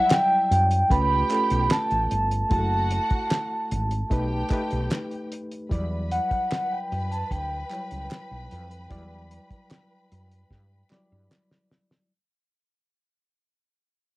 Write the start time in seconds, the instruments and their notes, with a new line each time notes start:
Already playing: reed electric piano F#3 G3 E4 D5, string section E4 E5, vibraphone F#5
0.10 vibraphone G5, snare, clap, closed hi-hat
0.51 fretless electric bass F#2, closed hi-hat
0.71 closed hi-hat
0.90 fretless electric bass C#2, reed electric piano A3 C#4 F4 B4, string section G4 G5, vibraphone B5, kick, closed hi-hat
1.30 reed electric piano A3 C#4 F4 A4, clap, closed hi-hat
1.50 fretless electric bass B1, closed hi-hat
1.70 vibraphone A5, snare, clap, closed hi-hat
1.91 fretless electric bass A1, closed hi-hat
2.11 fretless electric bass G1, closed hi-hat
2.31 closed hi-hat
2.50 fretless electric bass F#1, reed electric piano A3 E4 F#4 G#4, string section F#4 F#5, vibraphone A5, kick, closed hi-hat
2.59 reed electric piano A4
2.90 closed hi-hat
3.10 kick, closed hi-hat
3.30 snare, clap, closed hi-hat
3.71 fretless electric bass G#1, closed hi-hat
3.91 closed hi-hat
4.10 fretless electric bass B1, reed electric piano A3 D#4 G4 B4, string section G4 G5, kick, closed hi-hat
4.50 reed electric piano A3 D#4 G4 B4, kick, clap, closed hi-hat
4.70 fretless electric bass B1, closed hi-hat
4.90 snare, clap, closed hi-hat
5.11 closed hi-hat
5.32 closed hi-hat
5.51 closed hi-hat
5.69 fretless electric bass E2, reed electric piano F#3 G3 E4 D5, string section B4 B5, kick, closed hi-hat
6.11 vibraphone F#5, closed hi-hat
6.31 kick, closed hi-hat
6.51 snare, clap, closed hi-hat
6.71 vibraphone G5
6.92 fretless electric bass F#2, closed hi-hat
7.12 vibraphone A5, closed hi-hat
7.31 fretless electric bass D2, vibraphone G5, kick, closed hi-hat
7.70 reed electric piano F#3 G3 E4 C#5, clap, closed hi-hat
7.91 fretless electric bass C#2, closed hi-hat
8.11 snare, clap, closed hi-hat
8.31 fretless electric bass B1
8.51 fretless electric bass F2, closed hi-hat
8.71 closed hi-hat
8.90 fretless electric bass E2, reed electric piano F#3 G3 E4 D5, kick, closed hi-hat
9.31 closed hi-hat
9.51 kick, closed hi-hat
9.70 snare, clap, closed hi-hat
10.12 fretless electric bass F#2, closed hi-hat
10.31 closed hi-hat
10.51 fretless electric bass G2, kick, snare
10.90 reed electric piano F#3 G3 E4 D5, snare, clap
11.12 fretless electric bass G2
11.31 snare, clap
11.51 snare
11.71 snare
11.91 snare